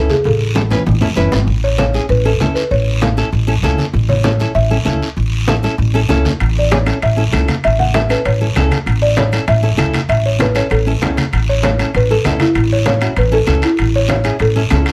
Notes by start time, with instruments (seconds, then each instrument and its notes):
Already playing: nylon-string guitar C#4 E4 A4
0.10 marimba G#4, high conga, short guiro
0.24 upright bass A1, marimba A4, high conga, long guiro
0.55 nylon-string guitar C#4 E4 A4, low conga, short guiro
0.70 nylon-string guitar C#4 E4 B4, low conga, short guiro
0.86 upright bass A1, low conga, long guiro
1.01 upright bass E1, nylon-string guitar C#4 E4 A4, low conga
1.16 upright bass F#1, nylon-string guitar C#4 E4 B4, low conga, short guiro
1.32 upright bass G#1, low conga, short guiro
1.47 upright bass A1, high conga, long guiro
1.64 marimba C#5
1.78 nylon-string guitar C#4 E4 A4, marimba C#5, high conga, short guiro
1.94 nylon-string guitar C#4 E4 G#4, short guiro
2.09 upright bass A1, marimba B4, high conga, long guiro
2.25 nylon-string guitar C#4 E4 A4, marimba A4
2.40 upright bass C#2, nylon-string guitar C#4 E4 A4, high conga, short guiro
2.55 marimba B4, short guiro
2.71 upright bass A1, marimba C#5, high conga, long guiro
3.01 nylon-string guitar C#4 E4 A4, high conga, short guiro
3.17 nylon-string guitar C#4 E4 A4, short guiro
3.32 upright bass A1, high conga, long guiro
3.47 nylon-string guitar C#4 E4 A4
3.62 upright bass C#2, nylon-string guitar C#4 E4 A4, high conga, short guiro
3.78 high conga, short guiro
3.93 upright bass A1, high conga, long guiro
4.09 marimba C#5, high conga
4.24 nylon-string guitar C#4 E4 A4, marimba C#5, high conga, short guiro
4.40 nylon-string guitar C#4 E4 A4, short guiro
4.55 upright bass A1, marimba E5, high conga, long guiro
4.70 nylon-string guitar C#4 E4 A4
4.85 upright bass C#2, nylon-string guitar C#4 E4 A4, high conga, short guiro
5.02 short guiro
5.16 upright bass A1, high conga, long guiro
5.48 nylon-string guitar C#4 E4 A4, high conga, short guiro
5.63 nylon-string guitar C#4 E4 A4, short guiro
5.78 upright bass A1, high conga, long guiro
5.94 nylon-string guitar C#4 E4 A4
6.09 upright bass C#2, nylon-string guitar C#4 E4 A4, high conga, short guiro
6.25 high conga, short guiro
6.40 upright bass A1, high timbale, long guiro
6.59 marimba D5
6.71 nylon-string guitar C#4 E4 G#4, marimba C#5, high conga, high timbale, short guiro
6.86 nylon-string guitar C#4 E4 A4, high timbale, short guiro
7.02 upright bass A1, marimba E5, high conga, high timbale, long guiro
7.16 nylon-string guitar C#4 E4 A4
7.32 upright bass C#2, nylon-string guitar C#4 E4 A4, high conga, high timbale, short guiro
7.48 high conga, high timbale, short guiro
7.64 upright bass A1, marimba E5, high conga, high timbale, long guiro
7.79 marimba F#5, high conga
7.94 nylon-string guitar C#4 E4 A4, marimba E5, high conga, high timbale, short guiro
8.09 nylon-string guitar C#4 E4 A4, marimba B4, high timbale, short guiro
8.25 upright bass A1, marimba C#5, high conga, high timbale, long guiro
8.41 nylon-string guitar C#4 E4 A4
8.56 upright bass C#2, nylon-string guitar C#4 E4 A4, high conga, high timbale, low timbale, short guiro
8.71 high conga, high timbale, short guiro
8.86 upright bass A1, high conga, high timbale, long guiro
9.02 marimba D5
9.17 nylon-string guitar C#4 E4 A4, marimba C#5, high conga, high timbale, short guiro
9.32 nylon-string guitar C#4 E4 A4, high timbale, short guiro
9.48 upright bass A1, marimba E5, high conga, high timbale, long guiro
9.62 nylon-string guitar C#4 E4 A4
9.77 upright bass C#2, nylon-string guitar C#4 E4 A4, high conga, high timbale, short guiro
9.94 high conga, high timbale, short guiro
10.09 upright bass A1, marimba E5, high conga, high timbale, long guiro
10.26 marimba C#5
10.39 nylon-string guitar C#4 E4 A4, marimba B4, high conga, high timbale, short guiro
10.55 nylon-string guitar C#4 E4 A4, marimba C#5, high timbale, short guiro
10.70 upright bass A1, marimba A4, high conga, high timbale, long guiro
10.86 nylon-string guitar C#4 E4 A4
11.01 upright bass C#2, nylon-string guitar C#4 E4 A4, high conga, high timbale, low timbale, short guiro
11.17 high conga, high timbale, short guiro
11.33 upright bass A1, high conga, high timbale, long guiro
11.49 marimba C#5
11.63 nylon-string guitar C#4 E4 A4, marimba C#5, high conga, high timbale, short guiro
11.79 nylon-string guitar C#4 E4 A4, high timbale, short guiro
11.94 upright bass A1, marimba B4, high conga, high timbale, long guiro
12.10 nylon-string guitar C#4 E4 A4, marimba A4
12.25 upright bass C#2, nylon-string guitar C#4 E4 A4, high conga, high timbale, low timbale, short guiro
12.40 marimba E4, high conga, high timbale, short guiro
12.55 upright bass A1, high timbale, long guiro
12.73 marimba C#5
12.86 nylon-string guitar C#4 E4 A4, marimba C#5, high conga, high timbale, short guiro
13.01 nylon-string guitar C#4 E4 F#4, high timbale, short guiro
13.16 upright bass A1, marimba B4, high conga, high timbale, long guiro
13.31 nylon-string guitar C#4 E4 A4, marimba A4
13.47 upright bass C#2, nylon-string guitar C#4 E4 A4, high conga, high timbale, short guiro
13.62 marimba E4, high timbale, short guiro
13.77 upright bass A1, high conga, high timbale, long guiro
13.96 marimba C#5
14.08 nylon-string guitar C#4 E4 F#4, marimba C#5, high conga, high timbale, short guiro
14.24 nylon-string guitar C#4 E4 G#4, high timbale, short guiro
14.39 upright bass A1, marimba A4, high conga, high timbale, long guiro
14.56 nylon-string guitar C#4 E4 A4
14.70 upright bass C#2, nylon-string guitar C#4 E4 A4, high conga, high timbale, low timbale, short guiro
14.86 high timbale, short guiro